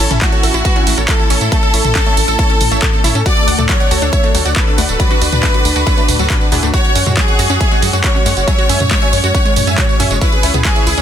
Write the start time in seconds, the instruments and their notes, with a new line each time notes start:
Already playing: analog synth pad A3 C#4 E4, violin section A4
0.11 analog synth bass A1, synth arpeggio sound C#4, supersaw synth E4, closed hi-hat, mid tom, tambourine
0.21 synth arpeggio sound A3, supersaw synth E4, violin section F#4, kick, clap, closed hi-hat, tambourine
0.32 supersaw synth A4 C#5, closed hi-hat, tambourine
0.43 analog synth bass A1, supersaw synth E4, synth arpeggio sound A4, open hi-hat, tambourine
0.54 analog synth bass A1, supersaw synth E4, synth arpeggio sound E4, closed hi-hat, tambourine
0.65 supersaw synth G#4 B4, kick, closed hi-hat, tambourine
0.76 synth arpeggio sound C#4, supersaw synth E4, closed hi-hat, tambourine
0.87 analog synth bass A1, synth arpeggio sound A3, supersaw synth E4, open hi-hat, tambourine
0.97 analog synth bass A1, supersaw synth A4 C#5, synth arpeggio sound A4, closed hi-hat, tambourine
1.08 supersaw synth E4, violin section A4, kick, clap, closed hi-hat, tambourine
1.19 supersaw synth E4, synth arpeggio sound E4, tambourine
1.30 analog synth bass A1, synth arpeggio sound C#4, supersaw synth A4 C#5, open hi-hat, tambourine
1.41 analog synth bass A2, supersaw synth E4, closed hi-hat, tambourine
1.52 synth arpeggio sound A3, supersaw synth C#5 E5, kick, closed hi-hat, tambourine
1.63 supersaw synth A4, synth arpeggio sound A4, closed hi-hat, tambourine
1.74 analog synth bass A1, synth arpeggio sound E4, supersaw synth C#5 E5, open hi-hat, tambourine
1.85 analog synth bass A1, supersaw synth A4, closed hi-hat, mid tom, tambourine
1.95 synth arpeggio sound C#4, supersaw synth A4, kick, clap, closed hi-hat, tambourine
2.06 synth arpeggio sound A3, supersaw synth C#5 E5, closed hi-hat, tambourine
2.17 analog synth bass A1, supersaw synth A4, open hi-hat, tambourine
2.28 analog synth bass A1, synth arpeggio sound A4, supersaw synth A4, closed hi-hat, tambourine
2.39 synth arpeggio sound E4, supersaw synth A4 C#5, kick, closed hi-hat, tambourine
2.50 synth arpeggio sound C#4, supersaw synth A4, closed hi-hat, tambourine
2.61 analog synth bass A1, supersaw synth A4, open hi-hat, mid tom, tambourine
2.71 analog synth bass A1, synth arpeggio sound A3, supersaw synth C#5 E5, closed hi-hat, tambourine
2.82 supersaw synth A4, synth arpeggio sound A4, kick, clap, closed hi-hat, mid tom, tambourine
2.93 supersaw synth A4, tambourine
3.04 analog synth bass A1, synth arpeggio sound E4, supersaw synth C#5 E5, open hi-hat, mid tom, tambourine
3.15 analog synth bass A2, synth arpeggio sound C#4, supersaw synth A4, closed hi-hat, tambourine
3.26 analog synth pad D4 F#4, synth arpeggio sound F#4, supersaw synth D5 F#5, violin section D5, kick, closed hi-hat, tambourine
3.36 supersaw synth A4, closed hi-hat, tambourine
3.47 analog synth bass D2, synth arpeggio sound D4, supersaw synth D5 F#5, open hi-hat, tambourine
3.58 analog synth bass D2, synth arpeggio sound A3, supersaw synth A4, closed hi-hat, mid tom, tambourine
3.69 synth arpeggio sound F#3, supersaw synth A4, violin section C#5, kick, clap, closed hi-hat, tambourine
3.80 supersaw synth D5 F#5, closed hi-hat, tambourine
3.91 analog synth bass D2, synth arpeggio sound F#4, supersaw synth A4, open hi-hat, tambourine
4.02 analog synth bass D2, synth arpeggio sound D4, supersaw synth A4, closed hi-hat, tambourine
4.13 supersaw synth C#5 E5, kick, closed hi-hat, tambourine
4.24 synth arpeggio sound A3, supersaw synth A4, closed hi-hat, tambourine
4.35 analog synth bass D2, synth arpeggio sound F#3, supersaw synth A4, open hi-hat, tambourine
4.45 analog synth bass D2, synth arpeggio sound F#4, supersaw synth D5 F#5, closed hi-hat, tambourine
4.56 supersaw synth A4, violin section B4, kick, clap, closed hi-hat, tambourine
4.67 synth arpeggio sound D4, supersaw synth A4, tambourine
4.78 analog synth bass D2, synth arpeggio sound A3, supersaw synth D5 F#5, open hi-hat, tambourine
4.89 analog synth bass D1, supersaw synth A4, closed hi-hat, tambourine
5.00 synth arpeggio sound F#3, supersaw synth F#4 D5, kick, closed hi-hat, tambourine
5.11 supersaw synth D4, synth arpeggio sound F#4, closed hi-hat, tambourine
5.21 analog synth bass D2, synth arpeggio sound D4, supersaw synth F#4 D5, open hi-hat, tambourine
5.32 analog synth bass D2, supersaw synth D4, closed hi-hat, mid tom, tambourine
5.43 synth arpeggio sound A3, supersaw synth D4, kick, clap, closed hi-hat, tambourine
5.54 synth arpeggio sound F#3, supersaw synth F#4 D5, closed hi-hat, tambourine
5.65 analog synth bass D2, supersaw synth D4, open hi-hat, tambourine
5.76 analog synth bass D2, supersaw synth D4, synth arpeggio sound F#4, closed hi-hat, tambourine
5.87 synth arpeggio sound D4, supersaw synth A4 C#5, kick, closed hi-hat, tambourine
5.97 synth arpeggio sound A3, supersaw synth D4, closed hi-hat, tambourine
6.08 analog synth bass D2, supersaw synth D4, open hi-hat, mid tom, tambourine
6.19 analog synth bass D2, synth arpeggio sound F#3, supersaw synth F#4 A4, closed hi-hat, tambourine
6.30 supersaw synth D4, synth arpeggio sound F#4, kick, clap, closed hi-hat, mid tom, tambourine
6.41 supersaw synth D4, tambourine
6.52 analog synth bass D2, synth arpeggio sound D4, supersaw synth E4 G#4, open hi-hat, mid tom, tambourine
6.63 analog synth bass D2, synth arpeggio sound A3, supersaw synth D4, closed hi-hat, tambourine
6.74 analog synth pad G#3 C#4, synth arpeggio sound F#4, supersaw synth C#5 F#5, violin section C#5, kick, closed hi-hat, tambourine
6.85 supersaw synth F#4, closed hi-hat, tambourine
6.95 analog synth bass F#2, synth arpeggio sound C#4, supersaw synth C#5 F#5, open hi-hat, tambourine
7.06 analog synth bass F#2, synth arpeggio sound G#3, supersaw synth F#4, closed hi-hat, mid tom, tambourine
7.17 synth arpeggio sound F#3, supersaw synth F#4, violin section G#4, kick, clap, closed hi-hat, tambourine
7.28 supersaw synth C#5 F#5, closed hi-hat, tambourine
7.39 analog synth bass F#2, synth arpeggio sound F#4, supersaw synth F#4, open hi-hat, tambourine
7.50 analog synth bass F#2, synth arpeggio sound C#4, supersaw synth F#4, closed hi-hat, tambourine
7.61 supersaw synth C#5 E5, kick, closed hi-hat, tambourine
7.71 synth arpeggio sound G#3, supersaw synth F#4, closed hi-hat, tambourine
7.82 analog synth bass F#2, synth arpeggio sound F#3, supersaw synth F#4, open hi-hat, tambourine
7.93 analog synth bass F#2, synth arpeggio sound F#4, supersaw synth C#5 F#5, closed hi-hat, tambourine
8.04 supersaw synth F#4, violin section C#5, kick, clap, closed hi-hat, tambourine
8.15 synth arpeggio sound C#4, supersaw synth F#4, tambourine
8.26 analog synth bass F#2, synth arpeggio sound G#3, supersaw synth C#5 F#5, open hi-hat, tambourine
8.37 analog synth bass F#1, supersaw synth F#4, closed hi-hat, tambourine
8.48 synth arpeggio sound F#3, supersaw synth E5 G#5, kick, closed hi-hat, tambourine
8.58 synth arpeggio sound F#4, supersaw synth C#5, closed hi-hat, tambourine
8.69 analog synth bass F#2, synth arpeggio sound C#4, supersaw synth E5 G#5, open hi-hat, tambourine
8.80 analog synth bass F#2, supersaw synth C#5, closed hi-hat, mid tom, tambourine
8.91 synth arpeggio sound G#3, supersaw synth C#5, kick, clap, closed hi-hat, tambourine
9.02 synth arpeggio sound F#3, supersaw synth E5 G#5, closed hi-hat, tambourine
9.13 analog synth bass F#2, supersaw synth C#5, open hi-hat, tambourine
9.24 analog synth bass F#2, synth arpeggio sound F#4, supersaw synth C#5, closed hi-hat, tambourine
9.35 synth arpeggio sound C#4, supersaw synth C#5 F#5, kick, closed hi-hat, tambourine
9.45 synth arpeggio sound G#3, supersaw synth C#5, closed hi-hat, tambourine
9.56 analog synth bass F#2, supersaw synth C#5, open hi-hat, mid tom, tambourine
9.67 analog synth bass F#2, synth arpeggio sound F#3, supersaw synth E5 G#5, closed hi-hat, tambourine
9.78 synth arpeggio sound F#4, supersaw synth C#5, kick, clap, closed hi-hat, mid tom, tambourine
9.89 supersaw synth C#5, tambourine
10.00 analog synth bass F#2, synth arpeggio sound C#4, supersaw synth E5 G#5, open hi-hat, mid tom, tambourine
10.11 analog synth bass F#1, synth arpeggio sound G#3, supersaw synth C#5, closed hi-hat, tambourine
10.21 analog synth pad C#3 E4 G#4 B4, synth arpeggio sound E4, violin section B4, supersaw synth C#5 E5, kick, closed hi-hat, tambourine
10.32 supersaw synth G#4, closed hi-hat, tambourine
10.43 analog synth bass C#2, synth arpeggio sound C#4, supersaw synth C#5 E5, open hi-hat, tambourine
10.54 analog synth bass C#2, synth arpeggio sound B3, supersaw synth G#4, closed hi-hat, mid tom, tambourine
10.65 synth arpeggio sound G#3, supersaw synth G#4, violin section G#4, kick, clap, closed hi-hat, tambourine
10.76 supersaw synth C#5 E5, closed hi-hat, tambourine
10.87 analog synth bass C#2, synth arpeggio sound E4, supersaw synth G#4, open hi-hat, tambourine
10.98 analog synth bass C#2, synth arpeggio sound C#4, supersaw synth G#4, closed hi-hat, tambourine